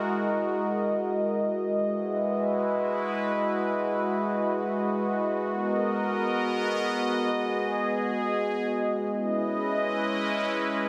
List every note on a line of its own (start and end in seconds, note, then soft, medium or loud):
0.00 1.82 G#3 medium
0.00 1.82 E4 medium
0.00 1.82 F#4 medium
0.00 1.82 A#4 medium
0.00 5.46 D#5 medium
1.86 9.09 G#3 medium
1.86 5.46 E4 medium
1.86 9.09 F#4 medium
1.86 5.46 B4 medium
5.50 9.10 B3 medium
5.50 7.30 A#4 medium
5.50 9.10 D#5 medium
7.32 9.11 G#4 medium
9.13 10.89 G#3 medium
9.13 10.89 C#4 medium
9.13 10.89 E4 medium
9.13 10.89 B4 medium
9.13 10.89 D#5 loud